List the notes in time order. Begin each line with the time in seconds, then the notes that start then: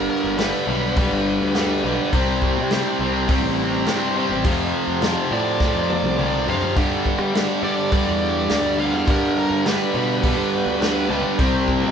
Already playing: G2 D3 G3
0.00 D4 G4 B4
0.10 A#4
0.24 G1
0.38 G2 D3 G3 B4, snare, open hi-hat
0.67 B1 G2 D3 G3
0.96 G2 D3 G3, kick, open hi-hat
1.11 G1
1.41 D2
1.55 G2 D3 G3, snare, open hi-hat
1.84 B1 G2 D3 G3
2.11 C2 C3 G3 C4 E4 G4 C5, kick, open hi-hat
2.15 C4
2.42 kick
2.56 C3
2.71 C3 G3 C4, snare, open hi-hat
2.99 C2 C3 G3 C4
3.29 C3 G3 C4, kick, open hi-hat
3.42 A1
3.85 G2 C3 G3 C4, snare, open hi-hat
4.16 C3 G3 C4
4.29 A1
4.43 F2 C3 F3 C4 F4 A4 C5, kick, open hi-hat
4.88 F2
5.02 F2 C3 F3, snare, open hi-hat
5.31 F2 A2 C3 F3 D5
5.60 F2 C3 F3, kick, snare
5.74 F2
5.90 high tom
6.03 C2, high tom
6.17 F2 C3 F3, mid tom
6.46 D2 F2 C3 F3 F5, floor tom
6.62 floor tom
6.76 G2 D3 G3 C4 D#4 G#4 C5, kick, open hi-hat
6.96 B3 D4 G4 B4
7.06 kick
7.18 G3
7.34 G2 D3 G3, snare, open hi-hat
7.63 G2 D3 G3 D5
7.91 G2 D3 G3, kick, open hi-hat
8.07 E2
8.50 D2 G2 D3 G3, snare, open hi-hat
8.78 G2 D3 G3 F5
8.93 E2
9.07 G2 D3 G3 B3 D4 G4 A#4 B4, kick, open hi-hat
9.38 A#4
9.51 G2
9.66 G2 D3 G3 B4, snare, open hi-hat
9.94 G2 B2 D3 G3
10.23 G2 D3 G3, kick, open hi-hat
10.38 G2
10.66 D2
10.81 G2 D3 G3, snare, open hi-hat
11.09 C#2 G2 D3 G3
11.38 C2 C3 G3 C4 E4 G4 C5, kick, open hi-hat
11.68 kick
11.83 C3